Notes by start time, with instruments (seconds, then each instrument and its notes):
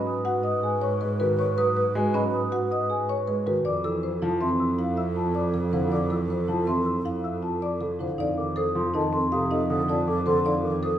Already playing: double bass G#2, grand piano F#3, marimba C#4 D#5, alto flute B4, celesta B5
0.07 celesta D#6
0.25 marimba F#4 F#5, celesta F#5
0.43 marimba D#5, celesta D#6
0.63 marimba G#4, celesta G#5
0.81 marimba C#5, celesta C#6
1.01 grand piano G#3, marimba B4
1.20 grand piano D#3, marimba F#4 B4
1.39 marimba C#5, celesta C#6
1.58 grand piano F#3, marimba B4, celesta D#6
1.77 marimba B4
1.95 grand piano G#3, marimba F#4, celesta G#5
2.14 grand piano F#3, marimba C#4 D#5, celesta B5
2.34 celesta D#6
2.52 marimba F#4 F#5, celesta F#5
2.71 marimba D#5, celesta D#6
2.90 marimba G#4, celesta G#5
3.09 marimba C#5, celesta C#6
3.28 grand piano G#3, marimba B4
3.46 grand piano D#3, marimba F#4 B4
3.65 double bass F2, alto flute A4, marimba D5, celesta D6
3.84 grand piano E3, marimba A4, celesta E6
4.03 marimba C5
4.22 grand piano F3, marimba E4, celesta A5
4.41 grand piano E3, marimba C4 E5, celesta C6
4.60 celesta E6
4.78 marimba E4 F5, celesta F5
4.97 marimba E5, celesta E6
5.16 marimba F4, celesta A5
5.35 marimba D5, celesta D6
5.54 grand piano F3, marimba A4
5.73 grand piano D3, marimba E4 C5, celesta F5
5.92 marimba D5, celesta D6
6.10 grand piano E3, marimba A4, celesta E6
6.30 marimba C5
6.48 grand piano F3, marimba E4, celesta A5
6.67 grand piano E3, marimba C4 E5, celesta C6
6.86 celesta E6
7.05 marimba E4 F5, celesta F5
7.24 marimba E5, celesta E6
7.43 marimba F4, celesta A5
7.62 marimba D5, celesta D6
7.81 grand piano F3, marimba A4
7.99 grand piano D3, marimba E4 C5, celesta F5
8.18 double bass F2, marimba D#4 D5, alto flute A4, celesta F5
8.37 grand piano D#3, alto flute A4, celesta D6
8.56 marimba A4 C5, alto flute A4, celesta D#6
8.75 grand piano F3, alto flute A4, celesta C6
8.94 grand piano D#3, marimba D#4 D#5, alto flute A4, celesta A5
9.13 marimba C4, alto flute A4, celesta C6
9.32 grand piano C3, alto flute A4, marimba F5, celesta D#6
9.51 marimba D#4 D#5, alto flute A4, celesta F5
9.70 grand piano D3, alto flute A4, celesta D#6
9.88 marimba F4 D5, alto flute A4, celesta A5
10.07 grand piano F3, alto flute A4, celesta D6
10.26 grand piano D3, marimba A4 C5, alto flute A4, celesta C6
10.45 marimba D#4 D5, alto flute A4, celesta F5
10.64 grand piano D#3, alto flute A4, celesta D6
10.83 marimba A4 C5, alto flute A4, celesta D#6